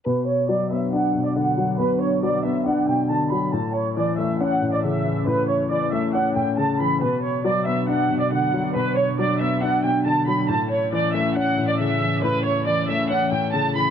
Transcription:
X:1
M:4/4
L:1/16
Q:1/4=138
K:Bm
V:1 name="Violin section"
B2 c2 d2 e2 f3 d f4 | B2 c2 d2 e2 f2 g2 a2 b2 | a2 c2 d2 e2 f3 d e4 | B2 c2 d2 e2 f2 g2 a2 b2 |
B2 c2 d2 e2 f3 d f4 | B2 c2 d2 e2 f2 g2 a2 b2 | a2 c2 d2 e2 f3 d e4 | B2 c2 d2 e2 f2 g2 a2 b2 |]
V:2 name="Analog synth pad" clef=bass
[B,,F,D]16- | [B,,F,D]16 | [A,,E,C]16- | [A,,E,C]16 |
[B,,F,D]16- | [B,,F,D]16 | [A,,E,C]16- | [A,,E,C]16 |]
V:3 name="Grand piano" clef=bass
B,,4 F,2 B,2 D2 B,,2 D,2 F,2 | B,,4 F,2 B,2 D2 B,,2 D,2 F,2 | A,,4 E,2 A,2 C2 A,,2 C,2 E,2 | A,,4 E,2 A,2 C2 A,,2 C,2 E,2 |
B,,4 F,2 B,2 D2 B,,2 D,2 F,2 | B,,4 F,2 B,2 D2 B,,2 D,2 F,2 | A,,4 E,2 A,2 C2 A,,2 C,2 E,2 | A,,4 E,2 A,2 C2 A,,2 C,2 E,2 |]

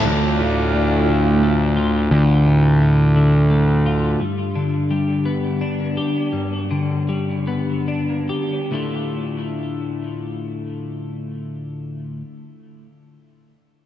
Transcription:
X:1
M:6/8
L:1/8
Q:3/8=54
K:Ddor
V:1 name="Analog synth pad"
[A,Fdf]6 | z6 | z6 | z6 |
z6 | z6 |]
V:2 name="Clean electric guitar" clef=bass
D,, A,, A,, D, A, F | D,, A,, A,, D, A, F | G,, D, G, B, D G | G,, D, G, B, D G |
[D,,A,,D,A,F]6- | [D,,A,,D,A,F]6 |]
V:3 name="Picked electric bass" clef=bass
D,,6 | D,,6 | z6 | z6 |
z6 | z6 |]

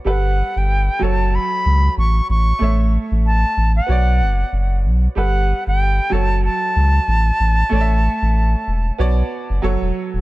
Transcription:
X:1
M:4/4
L:1/16
Q:"Swing 16ths" 1/4=94
K:F#phr
V:1 name="Flute"
f3 g3 a2 b4 c'2 c'2- | c'2 z2 a3 f6- f z2 | f3 g3 a2 a8- | a12 z4 |]
V:2 name="Grand piano"
[G,GAB]6 [F,FAc]8- [F,FAc]2 | [A,Ace]8 [B,Fcd]8 | [G,GAB]6 [F,FAc]8- [F,FAc]2 | [A,Acde]8 [B,Fcd]4 [F,FAc]4 |]
V:3 name="Sub bass" clef=bass
G,,,3 G,,,3 F,,,3 z C,,2 A,,,2 A,,,2 | A,,,3 A,,,3 A,,,2 B,,,2 F,,,2 F,,,2 B,,,2 | G,,,3 G,,,3 F,,,3 z C,,2 A,,,2 A,,,2 | A,,,3 A,,,3 E,,,2 B,,,2 z F,,, F,,, E,,, z D,,, |]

